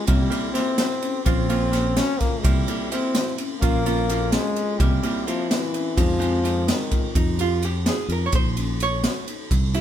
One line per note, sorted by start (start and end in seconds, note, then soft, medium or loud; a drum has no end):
0.07 0.27 C2 loud
0.07 0.52 G3 loud
0.07 0.28 A#3 medium
0.07 0.28 C4 medium
0.07 0.29 C4 medium
0.07 0.28 E4 medium
0.07 0.28 G4 medium
0.07 kick loud
0.07 ride medium
0.30 0.51 A#3 loud
0.30 0.51 C4 medium
0.30 0.51 E4 medium
0.30 0.53 E4 medium
0.30 0.51 G4 loud
0.30 ride medium
0.53 1.15 A#3 medium
0.53 1.21 C4 loud
0.53 0.97 C4 medium
0.53 1.16 C4 medium
0.53 1.15 E4 medium
0.53 1.15 G4 loud
0.53 snare soft
0.53 ride medium
0.78 snare loud
0.78 ride medium
1.02 1.24 C#4 medium
1.02 ride medium
1.25 1.99 A#1 loud
1.25 1.46 A#3 medium
1.25 1.99 C4 loud
1.25 1.46 C4 medium
1.25 1.47 C#4 medium
1.25 1.46 C#4 medium
1.25 1.46 F4 medium
1.25 kick loud
1.25 ride medium
1.49 1.92 A#3 medium
1.49 1.70 A#3 loud
1.49 1.70 C4 medium
1.49 1.70 C#4 medium
1.49 1.70 F4 loud
1.49 ride medium
1.72 2.33 A#3 medium
1.72 2.33 C4 medium
1.72 2.33 C#4 medium
1.72 2.33 G4 medium
1.72 snare soft
1.72 ride medium
1.97 2.19 C#4 medium
1.97 2.21 C#4 loud
1.97 snare loud
1.97 ride medium
2.20 2.45 A#3 loud
2.20 2.42 F4 medium
2.20 kick medium
2.20 snare soft
2.20 ride medium
2.43 2.63 C2 medium
2.43 2.93 G3 medium
2.43 2.64 A#3 medium
2.43 2.64 C4 medium
2.43 2.66 C4 medium
2.43 2.64 E4 medium
2.43 2.64 G4 loud
2.43 kick loud
2.43 ride medium
2.68 2.88 A#3 medium
2.68 2.88 C4 medium
2.68 2.89 E4 medium
2.68 2.88 E4 medium
2.68 2.88 G4 medium
2.68 ride medium
2.92 3.52 A#3 medium
2.92 3.34 C4 medium
2.92 3.35 C4 medium
2.92 3.52 C4 medium
2.92 3.52 E4 medium
2.92 3.52 G4 loud
2.92 ride medium
3.15 snare loud
3.15 ride medium
3.38 3.60 C#4 medium
3.38 ride medium
3.60 4.35 A#1 loud
3.60 4.34 A#3 loud
3.60 3.82 A#3 loud
3.60 3.82 C4 medium
3.60 3.82 C#4 medium
3.60 3.83 C#4 medium
3.60 3.82 F4 loud
3.60 kick loud
3.60 ride medium
3.86 4.06 A#3 loud
3.86 4.06 C4 medium
3.86 4.06 C#4 medium
3.86 4.06 F4 loud
3.86 ride medium
4.09 4.70 A#3 medium
4.09 4.70 C4 medium
4.09 4.70 C#4 medium
4.09 4.70 F4 medium
4.09 ride medium
4.32 4.81 G#3 loud
4.32 4.54 C#4 medium
4.32 snare loud
4.32 ride medium
4.56 4.78 F4 medium
4.56 ride medium
4.79 4.98 C2 loud
4.79 5.28 G3 loud
4.79 5.00 A#3 loud
4.79 5.01 C4 medium
4.79 5.00 C4 medium
4.79 5.00 E4 medium
4.79 5.00 G4 loud
4.79 kick loud
4.79 ride medium
5.03 5.24 A#3 loud
5.03 5.23 C4 medium
5.03 5.24 E4 medium
5.03 5.25 E4 medium
5.03 5.24 G4 medium
5.03 ride medium
5.27 5.51 F3 medium
5.27 5.87 A#3 loud
5.27 5.69 C4 medium
5.27 5.87 C4 medium
5.27 5.87 E4 medium
5.27 5.87 G4 medium
5.27 ride medium
5.49 5.98 E3 loud
5.49 snare loud
5.49 ride medium
5.74 5.95 C#4 medium
5.74 ride medium
5.97 6.70 F2 loud
5.97 6.70 F3 medium
5.97 6.17 G#3 loud
5.97 6.17 C4 medium
5.97 6.17 D#4 medium
5.97 6.18 D#4 medium
5.97 6.17 G4 loud
5.97 kick loud
5.97 ride medium
6.19 6.40 G#3 loud
6.19 6.40 C4 medium
6.19 6.63 C4 medium
6.19 6.40 D#4 medium
6.19 6.40 G4 medium
6.19 ride medium
6.44 7.04 G#3 medium
6.44 7.04 C4 medium
6.44 7.04 D#4 medium
6.44 7.05 G4 medium
6.44 ride medium
6.67 7.15 D#3 medium
6.67 6.89 D#4 medium
6.67 snare loud
6.67 ride medium
6.91 7.13 F4 medium
6.91 kick medium
6.91 ride medium
7.14 7.88 F2 loud
7.14 7.38 D#4 medium
7.14 7.36 F4 medium
7.14 kick loud
7.14 ride medium
7.38 7.64 F4 medium
7.38 7.60 G4 medium
7.38 ride medium
7.61 7.83 F4 medium
7.61 7.88 G4 medium
7.61 ride medium
7.86 8.07 D#4 medium
7.86 8.09 G#4 medium
7.86 snare loud
7.86 ride medium
8.08 8.27 F2 medium
8.08 8.30 F4 medium
8.08 8.28 A#4 medium
8.08 ride medium
8.26 8.33 C#5 medium
8.32 9.06 A#1 medium
8.32 8.54 D#4 medium
8.32 8.82 C5 medium
8.32 kick loud
8.32 ride medium
8.56 8.99 C#4 medium
8.56 ride medium
8.80 9.25 C#5 loud
8.80 ride medium
9.04 snare loud
9.04 ride medium
9.27 9.48 D#4 medium
9.27 ride medium
9.51 9.81 C2 medium
9.51 9.72 E4 medium
9.51 kick loud
9.51 ride medium
9.74 9.81 E4 medium
9.74 9.81 G4 medium
9.74 ride medium